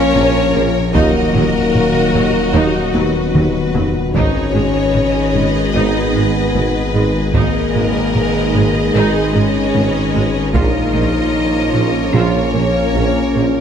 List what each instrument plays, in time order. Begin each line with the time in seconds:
Already playing: detuned saw bass A#1, trombone section F3 A#3, ambient pad F3 C#4 F4, french horn section C#4, violin section A#4 C#5
0.14 double bass section A#1, tuba A#1, cello section A#2, viola section C#4, taiko low-mid
0.54 double bass section A#1, tuba A#1, cello section A#2, viola section A#3
0.93 detuned saw bass D#1, cello section D#2, tuba D#2, double bass section D#2, trombone section D#3 F#3, ambient pad D#3 D#4 F#4, french horn section A#3, viola section D#4 F#4, violin section F#4 A#4 D#5, taiko
1.34 double bass section D#2, cello section D#2, tuba D#2, viola section F#3, taiko low-mid
1.75 taiko low-mid
2.13 double bass section D#2, tuba D#2, cello section D#2, viola section F#3, taiko low-mid
2.54 cello section D#2, double bass section D#2, tuba D#2, viola section D#4
2.94 cello section D#2, tuba D#2, double bass section D#2, viola section F#3, french horn section B3, violin section B4, taiko high
3.34 double bass section D#2, cello section D#2, tuba D#2, viola section F#3, taiko mid
3.74 cello section D#2, tuba D#2, double bass section D#2, viola section F#3, taiko low
4.13 double bass section G#1, detuned saw bass G#1, tuba G#1, cello section G#2, trombone section D#3 G#3, ambient pad D#3 G#3 D#4 G#4, french horn section C#4, viola section D#4 G#4, violin section B4 C#5 D#5, taiko
4.53 double bass section G#1, tuba G#1, cello section G#2, viola section G#3, taiko low-mid
4.95 taiko low-mid
5.33 double bass section G#1, tuba G#1, cello section G#2, viola section G#3, taiko low-mid
5.73 double bass section G#1, tuba G#1, cello section G#2, french horn section B3, viola section D#4, violin section B4
6.14 double bass section G#1, tuba G#1, cello section G#2, viola section G#3
6.53 double bass section G#1, tuba G#1, cello section G#2, viola section B3, taiko low-mid
6.93 double bass section G#1, tuba G#1, cello section G#2, viola section G#3
7.34 double bass section G#1, tuba G#1, detuned saw bass G#1, cello section G#2, trombone section D#3 G#3, ambient pad D#3 G#3 D#4 G#4, french horn section A#3, viola section D#4 G#4, violin section A#4 B4 D#5, taiko
7.73 tuba G#1, double bass section G#1, cello section G#2, viola section G#3, taiko low-mid
8.15 taiko low-mid
8.54 tuba G#1, double bass section G#1, cello section G#2, viola section G#3, taiko low-mid
8.94 tuba G#1, double bass section G#1, cello section G#2, french horn section G#3, viola section D#4, violin section G#4
9.34 tuba G#1, double bass section G#1, cello section G#2, viola section G#3, french horn section C#4, violin section C#5
9.74 tuba G#1, double bass section G#1, cello section G#2, viola section B3, taiko low-mid
10.14 tuba G#1, double bass section G#1, cello section G#2, viola section G#3
10.54 tuba A#1, double bass section A#1, detuned saw bass A#1, cello section A#2, trombone section F3 A#3, ambient pad F3 A#3 C#4 F4, french horn section D#4, viola section F4, violin section A#4 C#5 D#5, taiko
10.94 tuba A#1, double bass section A#1, cello section A#2, viola section A#3
11.74 double bass section A#1, tuba A#1, cello section A#2, viola section A#3
12.13 tuba A#1, double bass section A#1, cello section A#2, french horn section C#4, viola section F4, violin section C#5
12.54 tuba A#1, double bass section A#1, cello section A#2, viola section A#3
12.94 double bass section A#1, tuba A#1, cello section A#2, viola section C#4
13.34 double bass section A#1, tuba A#1, cello section A#2, viola section A#3